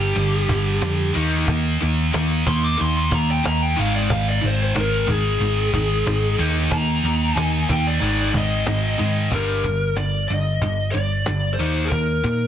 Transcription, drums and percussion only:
0.16 cajon slap medium
0.49 cajon bass medium
0.82 cajon slap loud
1.15 cajon slap soft
1.48 cajon bass loud
1.81 cajon slap soft
2.14 cajon slap loud
2.46 cajon bass medium
2.80 cajon slap medium
3.12 cajon bass medium
3.45 cajon slap loud
3.77 cajon slap soft
4.10 cajon bass loud
4.43 cajon slap soft
4.76 cajon slap loud
4.92 cajon slap soft
5.08 cajon bass medium
5.40 cajon slap medium
5.73 cajon bass medium
6.07 cajon slap loud
6.40 cajon slap soft
6.71 cajon bass loud
7.04 cajon slap soft
7.37 cajon slap loud
7.69 cajon bass medium
8.02 cajon slap soft
8.34 cajon bass medium
8.67 cajon slap loud
8.99 cajon slap soft
9.32 cajon bass loud
9.64 cajon bass medium
9.97 cajon slap loud
10.62 cajon bass medium
11.26 cajon slap loud
11.91 cajon bass loud
12.24 cajon bass medium

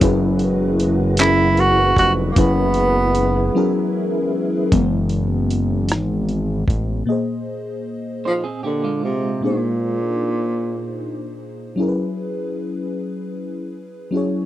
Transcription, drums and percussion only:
0.01 kick loud
0.01 closed hi-hat medium
0.39 closed hi-hat soft
0.80 closed hi-hat soft
1.17 clap loud
1.17 closed hi-hat medium
1.57 closed hi-hat soft
1.97 kick medium
1.97 closed hi-hat soft
2.36 kick loud
2.36 closed hi-hat medium
2.74 closed hi-hat medium
3.15 closed hi-hat soft
4.72 kick loud
4.72 closed hi-hat medium
5.09 closed hi-hat soft
5.50 closed hi-hat soft
5.89 cross-stick medium
5.89 closed hi-hat medium
6.29 closed hi-hat soft
6.68 kick medium
6.68 closed hi-hat soft

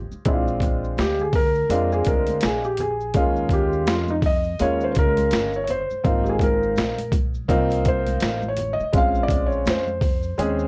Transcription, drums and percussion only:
0.12 maracas soft
0.25 kick loud
0.25 closed hi-hat medium
0.25 maracas medium
0.48 maracas soft
0.60 kick medium
0.60 closed hi-hat medium
0.60 low conga medium
0.60 maracas soft
0.84 maracas soft
0.97 snare loud
0.97 closed hi-hat medium
0.97 high conga soft
0.97 maracas medium
1.19 high conga medium
1.19 maracas soft
1.33 kick medium
1.33 open hi-hat medium
1.33 low conga medium
1.33 maracas soft
1.55 maracas soft
1.70 closed hi-hat medium
1.70 maracas medium
1.92 maracas soft
2.05 kick medium
2.05 closed hi-hat medium
2.05 maracas soft
2.27 closed hi-hat soft
2.27 high conga medium
2.27 maracas soft
2.41 snare loud
2.41 closed hi-hat loud
2.41 maracas medium
2.64 maracas soft
2.77 closed hi-hat medium
2.77 low conga medium
2.77 maracas soft
3.00 maracas soft
3.14 kick loud
3.14 closed hi-hat medium
3.14 maracas medium
3.36 maracas soft
3.49 kick medium
3.49 closed hi-hat medium
3.49 low conga medium
3.49 maracas medium
3.73 maracas soft
3.87 snare loud
3.87 closed hi-hat medium
3.87 high conga soft
3.87 maracas medium
4.08 high conga medium
4.08 maracas soft
4.22 kick loud
4.22 open hi-hat medium
4.22 low conga medium
4.22 maracas soft
4.44 maracas soft
4.59 closed hi-hat medium
4.59 maracas medium
4.80 maracas medium
4.95 kick medium
4.95 closed hi-hat medium
4.95 maracas soft
5.17 closed hi-hat soft
5.17 high conga medium
5.17 maracas soft
5.31 snare loud
5.31 closed hi-hat loud
5.31 maracas medium
5.54 maracas soft
5.68 closed hi-hat medium
5.68 low conga medium
5.68 maracas soft
5.90 maracas soft
6.04 kick loud
6.04 closed hi-hat medium
6.04 maracas medium
6.26 maracas soft
6.39 kick medium
6.39 closed hi-hat medium
6.39 low conga medium
6.39 maracas medium
6.63 maracas soft
6.76 snare loud
6.76 closed hi-hat medium
6.76 high conga soft
6.76 maracas medium
6.98 closed hi-hat medium
6.98 high conga medium
6.98 maracas soft
7.12 kick loud
7.12 closed hi-hat medium
7.12 high conga soft
7.12 low conga medium
7.12 maracas soft
7.34 maracas soft
7.49 kick medium
7.49 closed hi-hat medium
7.49 maracas medium
7.70 closed hi-hat soft
7.70 maracas soft
7.85 kick medium
7.85 closed hi-hat medium
7.85 maracas soft
8.07 closed hi-hat soft
8.07 high conga medium
8.07 maracas soft
8.20 snare loud
8.20 closed hi-hat loud
8.20 maracas medium
8.42 high conga medium
8.42 maracas soft
8.57 closed hi-hat medium
8.57 low conga medium
8.57 maracas soft
8.80 maracas soft
8.93 kick loud
8.93 closed hi-hat medium
8.93 maracas medium
9.15 maracas soft
9.28 kick medium
9.28 closed hi-hat medium
9.28 low conga medium
9.28 maracas medium
9.52 maracas soft
9.65 snare loud
9.65 closed hi-hat medium
9.65 high conga soft
9.65 maracas medium
9.87 high conga medium
9.87 maracas soft
10.01 kick loud
10.01 open hi-hat medium
10.01 low conga medium
10.01 maracas soft
10.23 maracas medium
10.38 closed hi-hat medium
10.38 maracas medium
10.59 maracas medium

